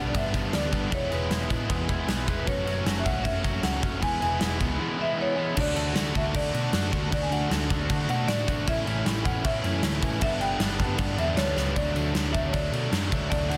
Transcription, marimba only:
0.07 0.14 D5 medium
0.17 0.56 E5 medium
0.55 0.94 D5 medium
0.94 1.13 C#5 loud
1.13 2.25 B4 medium
2.40 2.47 B4 medium
2.48 3.02 C#5 medium
2.99 3.05 E5 medium
3.05 3.23 F#5 loud
3.24 3.64 E5 loud
3.63 3.99 F#5 loud
4.03 4.21 G#5 loud
4.22 5.34 G#5 loud
5.01 5.20 E5 medium
5.21 5.60 C#5 medium
5.60 6.19 D5 loud
6.17 6.34 E5 medium
6.36 6.89 D5 loud
7.13 7.25 D5 medium
7.22 7.30 G#5 medium
7.32 8.08 F#5 loud
8.09 8.29 F#5 loud
8.28 8.68 D5 loud
8.69 9.22 E5 loud
9.25 9.45 F#5 loud
9.45 9.99 E5 loud
10.23 10.42 E5 loud
10.40 11.21 G5 loud
11.19 11.39 E5 loud
11.36 11.77 C#5 loud
11.76 12.36 D5 loud
12.33 12.47 E5 loud
12.46 12.54 C#5 medium
12.53 13.08 D5 loud
13.30 13.51 D5 loud
13.49 13.57 F#5 loud

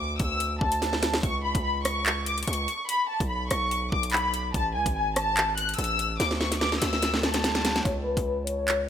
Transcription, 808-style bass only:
0.00 0.19 D2 loud
0.20 0.60 D2 loud
0.61 1.21 D2 loud
1.23 1.54 C#2 loud
1.55 2.44 C#2 loud
2.47 2.67 C#2 loud
3.20 3.50 B1 loud
3.51 3.91 B1 loud
3.92 4.52 B1 loud
4.54 4.77 A1 loud
4.75 4.85 C#2 loud
4.86 5.75 G#1 loud
5.78 6.18 A1 loud
6.20 6.79 D2 loud
6.82 7.81 D2 loud
7.85 8.16 C#2 loud
8.17 8.89 C#2 loud

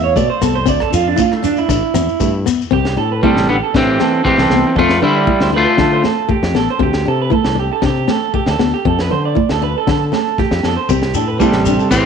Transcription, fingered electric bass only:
0.00 0.15 E2 loud
0.16 0.29 B2 loud
0.41 0.65 C2 medium
0.67 0.80 D2 loud
0.93 1.17 F2 medium
1.68 1.82 A1 loud
1.94 2.07 E2 loud
2.20 2.44 G2 loud
2.72 2.96 C2 loud
2.97 3.21 A2 medium
3.37 3.60 A1 medium
3.74 3.98 A2 loud
4.38 4.49 C2 loud
4.50 4.63 C2 medium
4.76 5.00 F2 loud
5.02 5.26 D3 medium
5.41 5.65 D2 medium
5.77 6.02 D3 medium
6.43 6.53 F2 medium
6.54 6.67 A1 medium
6.80 7.04 D2 loud
7.08 7.31 C3 loud
7.46 7.69 C2 medium
7.82 8.06 C3 loud
8.47 8.59 D2 loud
8.60 8.72 D2 medium
8.85 9.09 F2 loud
9.11 9.35 D3 medium
9.51 9.74 D2 medium
9.87 10.11 D3 medium
10.51 10.63 F2 loud
10.64 10.77 F2 medium
10.89 11.13 C2 loud
11.14 11.39 A2 medium
11.53 11.78 A1 medium
11.91 12.06 A2 medium

